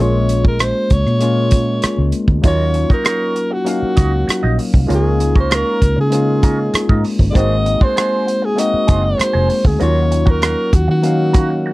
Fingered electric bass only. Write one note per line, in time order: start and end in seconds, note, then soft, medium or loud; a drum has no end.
0.00 0.72 A#1 medium
0.91 1.04 C#2 medium
1.06 1.79 A#2 medium
1.84 muted fingered electric bass stroke soft
1.98 2.12 C#2 medium
2.28 2.41 D2 medium
2.44 2.84 D#2 medium
2.90 muted fingered electric bass stroke soft
3.82 muted fingered electric bass stroke soft
3.97 4.24 C#2 medium
4.28 muted fingered electric bass stroke soft
4.44 4.57 A#1 medium
4.74 4.87 C2 medium
4.90 5.63 C#2 medium
5.82 5.95 C#2 medium
5.98 6.70 C#3 medium
6.74 muted fingered electric bass stroke soft
6.89 7.03 G#2 medium
7.19 7.33 G1 medium
7.36 7.75 G#1 medium
7.81 muted fingered electric bass stroke soft
8.74 muted fingered electric bass stroke soft
8.89 9.15 F#1 medium
9.35 9.48 F1 medium
9.65 9.78 D2 medium
9.81 10.54 D#2 medium
10.73 10.86 D#2 medium
10.88 11.73 D#3 medium